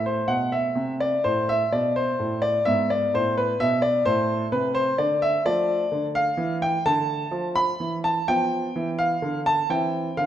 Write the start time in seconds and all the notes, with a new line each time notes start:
Already playing: A2 A3
0.06 C5
0.28 B2 F#5
0.52 E5
0.75 C3
1.00 D5
1.24 A2 C5
1.49 E5
1.72 B2 D5
1.96 C5
2.19 A2
2.42 D5
2.65 G#2 B3 E5
2.90 D5
3.14 A2 C5
3.38 B4
3.60 B2 E5
3.82 D5
4.05 A2 A3 C5
4.52 C3 B4
4.75 C5
4.98 D3 D5
5.22 E5
5.45 F3 A3 D5
5.92 D3
6.15 F5
6.37 E3
6.62 G5
6.86 D3 A5
7.31 F3
7.55 B5
7.80 E3
8.04 A5
8.28 F3 B3 G5
8.76 E3
8.99 F5
9.22 D3
9.46 A5
9.70 E3 C4 G5
10.17 D3 F5